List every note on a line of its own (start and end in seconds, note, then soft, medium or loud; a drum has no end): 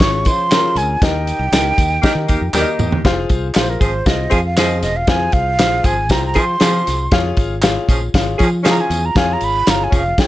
0.00 0.27 G#1 loud
0.00 0.41 C#4 medium
0.00 0.42 F4 medium
0.00 0.41 G#4 medium
0.00 0.41 C#5 medium
0.00 0.29 C#6 loud
0.00 kick loud
0.00 snare loud
0.00 closed hi-hat medium
0.00 tambourine medium
0.25 0.77 F3 loud
0.25 0.79 C6 loud
0.25 kick medium
0.25 closed hi-hat medium
0.25 tambourine medium
0.51 0.92 C#4 medium
0.51 0.58 E4 medium
0.51 0.92 G#4 medium
0.51 0.92 A#4 medium
0.51 snare loud
0.51 clap medium
0.51 closed hi-hat medium
0.51 tambourine medium
0.58 0.95 F4 medium
0.75 0.95 D2 medium
0.75 1.06 G#5 medium
0.75 closed hi-hat medium
0.75 tambourine medium
1.02 1.31 D#2 loud
1.02 1.43 D#4 medium
1.02 1.43 G4 medium
1.02 1.43 A#4 medium
1.02 1.43 D#5 medium
1.02 2.56 G5 medium
1.02 kick loud
1.02 snare loud
1.02 closed hi-hat medium
1.02 tambourine soft
1.27 closed hi-hat medium
1.27 tambourine soft
1.39 1.49 C2 loud
1.52 1.72 C#2 medium
1.52 1.93 D#4 medium
1.52 1.93 G4 medium
1.52 1.93 A#4 medium
1.52 1.93 D#5 medium
1.52 snare loud
1.52 clap medium
1.52 closed hi-hat medium
1.52 tambourine medium
1.78 1.97 D#2 medium
1.78 kick medium
1.78 closed hi-hat medium
1.78 tambourine medium
2.02 2.12 D#3 loud
2.02 2.11 A#3 medium
2.02 2.44 D#4 medium
2.02 2.11 G4 loud
2.02 2.44 G4 medium
2.02 2.44 A#4 medium
2.02 2.44 D#5 medium
2.02 kick loud
2.02 snare loud
2.02 closed hi-hat medium
2.02 tambourine medium
2.15 2.25 D#3 loud
2.28 2.39 D#2 medium
2.28 2.39 D#3 medium
2.28 2.39 A#3 medium
2.28 2.39 G4 medium
2.28 kick medium
2.28 closed hi-hat medium
2.28 tambourine soft
2.41 2.51 F2 medium
2.53 2.63 D#2 medium
2.53 3.02 D#3 medium
2.53 3.03 A#3 medium
2.53 2.95 D#4 medium
2.53 3.02 G4 loud
2.53 2.95 G4 medium
2.53 2.95 A#4 medium
2.53 2.61 D5 medium
2.53 snare medium
2.53 clap medium
2.53 tambourine medium
2.61 2.98 D#5 medium
2.79 2.99 E2 medium
2.79 mid tom medium
2.79 tambourine medium
2.92 floor tom medium
3.05 3.24 F1 loud
3.05 3.45 F4 loud
3.05 3.11 G4 medium
3.05 3.46 C5 loud
3.05 3.46 F5 loud
3.05 kick loud
3.05 snare loud
3.05 closed hi-hat medium
3.05 tambourine soft
3.11 3.49 G#4 medium
3.29 3.50 C2 medium
3.29 kick medium
3.29 closed hi-hat medium
3.29 tambourine soft
3.54 3.76 A#1 medium
3.54 3.96 F4 medium
3.54 3.96 G#4 medium
3.54 3.97 C5 medium
3.54 3.71 C5 medium
3.54 3.96 F5 medium
3.54 snare loud
3.54 clap medium
3.54 closed hi-hat medium
3.54 tambourine medium
3.69 3.82 A#4 medium
3.81 4.01 G#1 medium
3.81 3.92 F3 medium
3.81 3.92 C4 medium
3.81 3.92 G#4 medium
3.81 4.09 C5 medium
3.81 kick medium
3.81 closed hi-hat medium
3.81 tambourine soft
4.06 4.26 C2 loud
4.06 4.47 F4 medium
4.06 4.47 G#4 medium
4.06 4.47 C5 medium
4.06 4.33 D#5 medium
4.06 4.47 F5 medium
4.06 kick loud
4.06 snare loud
4.06 closed hi-hat medium
4.06 tambourine medium
4.30 4.84 F2 medium
4.30 4.39 F3 medium
4.30 4.39 C4 medium
4.30 4.39 G#4 loud
4.30 4.45 F5 medium
4.30 kick medium
4.30 closed hi-hat medium
4.30 tambourine soft
4.46 4.59 F5 medium
4.57 4.94 F3 medium
4.57 4.94 C4 medium
4.57 4.98 F4 medium
4.57 4.98 G#4 medium
4.57 4.94 G#4 loud
4.57 4.98 C5 medium
4.57 4.81 D#5 medium
4.57 4.98 F5 medium
4.57 snare loud
4.57 clap medium
4.57 closed hi-hat medium
4.57 tambourine medium
4.82 5.03 E1 medium
4.82 4.98 D#5 medium
4.82 snare soft
4.82 closed hi-hat medium
4.82 tambourine soft
4.96 5.10 F5 medium
5.07 5.27 F2 loud
5.07 5.49 F4 medium
5.07 5.49 G#4 medium
5.07 5.49 C5 medium
5.07 5.49 F5 loud
5.07 5.34 G#5 loud
5.07 kick loud
5.07 snare loud
5.07 closed hi-hat medium
5.07 tambourine soft
5.32 5.59 C2 medium
5.32 5.87 F5 loud
5.32 kick medium
5.32 closed hi-hat medium
5.59 5.79 A#1 medium
5.59 6.00 F4 medium
5.59 5.66 G4 medium
5.59 6.00 C5 medium
5.59 6.00 F5 medium
5.59 snare loud
5.59 clap medium
5.59 closed hi-hat medium
5.59 tambourine medium
5.66 6.03 G#4 medium
5.83 6.10 G#1 medium
5.83 5.95 F3 medium
5.83 5.95 C4 medium
5.83 5.95 G#4 medium
5.83 6.13 G#5 loud
5.83 kick medium
5.83 closed hi-hat medium
5.83 tambourine medium
6.09 6.37 C2 loud
6.09 6.51 F4 medium
6.09 6.51 G#4 medium
6.09 6.51 C5 medium
6.09 6.51 G5 medium
6.09 6.23 A#5 medium
6.09 kick medium
6.09 snare loud
6.09 closed hi-hat medium
6.09 tambourine medium
6.26 6.40 A#5 medium
6.34 6.43 F3 medium
6.34 6.55 F3 loud
6.34 6.43 C4 medium
6.34 6.44 G#4 loud
6.34 kick medium
6.34 closed hi-hat medium
6.34 tambourine soft
6.39 7.14 C6 medium
6.60 6.97 F3 medium
6.60 6.81 F3 loud
6.60 6.97 C4 medium
6.60 7.02 F4 medium
6.60 6.97 G#4 medium
6.60 7.02 G#4 medium
6.60 7.02 C5 medium
6.60 7.02 F5 medium
6.60 snare loud
6.60 clap medium
6.60 closed hi-hat medium
6.60 tambourine medium
6.87 7.07 C2 medium
6.87 snare soft
6.87 closed hi-hat medium
6.87 tambourine medium
7.11 7.32 F2 loud
7.11 7.53 F4 loud
7.11 7.53 G#4 loud
7.11 7.53 C#5 loud
7.11 7.53 F5 loud
7.11 kick loud
7.11 snare loud
7.11 closed hi-hat medium
7.11 tambourine soft
7.37 7.77 G#1 medium
7.37 kick medium
7.37 closed hi-hat medium
7.37 tambourine soft
7.62 8.04 F4 medium
7.62 8.04 G#4 medium
7.62 8.04 C#5 medium
7.62 8.04 F5 loud
7.62 snare loud
7.62 clap medium
7.62 closed hi-hat medium
7.62 tambourine medium
7.88 8.08 A#1 medium
7.88 7.99 F3 medium
7.88 7.99 C#4 medium
7.88 7.99 G#4 loud
7.88 kick medium
7.88 closed hi-hat medium
7.88 tambourine medium
8.14 8.34 G#1 medium
8.14 8.55 F4 medium
8.14 8.55 G#4 medium
8.14 8.55 C#5 medium
8.14 8.55 F5 medium
8.14 kick medium
8.14 snare loud
8.14 closed hi-hat medium
8.14 tambourine medium
8.39 8.48 F3 medium
8.39 8.79 F3 loud
8.39 8.47 C#4 medium
8.39 8.47 G#4 loud
8.39 kick medium
8.39 closed hi-hat medium
8.39 tambourine soft
8.43 8.49 G#5 medium
8.64 9.01 F3 medium
8.64 9.01 C#4 medium
8.64 9.06 F4 medium
8.64 9.01 G#4 loud
8.64 9.06 G#4 medium
8.64 9.06 C#5 medium
8.64 9.06 F5 medium
8.64 snare loud
8.64 clap medium
8.64 closed hi-hat medium
8.64 tambourine medium
8.69 8.82 A#5 medium
8.81 9.07 G#5 medium
8.90 9.10 E2 medium
8.90 closed hi-hat medium
8.90 tambourine medium
9.05 9.19 A#5 medium
9.15 9.35 F2 loud
9.15 9.57 F4 loud
9.15 9.57 G#4 medium
9.15 9.57 C#5 medium
9.15 9.57 F5 loud
9.15 9.34 G#5 loud
9.15 kick loud
9.15 snare loud
9.15 closed hi-hat medium
9.15 tambourine soft
9.33 9.45 A#5 medium
9.41 9.61 G#1 medium
9.41 9.71 B5 loud
9.41 closed hi-hat medium
9.41 tambourine soft
9.67 9.87 G1 medium
9.67 10.09 F4 medium
9.67 10.08 G#4 medium
9.67 10.08 C#5 medium
9.67 10.09 F5 medium
9.67 9.85 A#5 medium
9.67 snare loud
9.67 clap medium
9.67 closed hi-hat medium
9.67 tambourine medium
9.84 9.95 G#5 medium
9.91 10.12 F1 medium
9.91 10.02 F3 medium
9.91 10.02 C#4 medium
9.91 10.02 G#4 medium
9.91 kick medium
9.91 closed hi-hat medium
9.91 tambourine medium
9.97 10.22 F5 loud
10.18 10.27 F4 medium
10.18 10.27 G#4 medium
10.18 10.27 C#5 medium
10.18 10.27 G5 medium
10.18 kick loud
10.18 snare loud
10.18 closed hi-hat medium
10.18 tambourine medium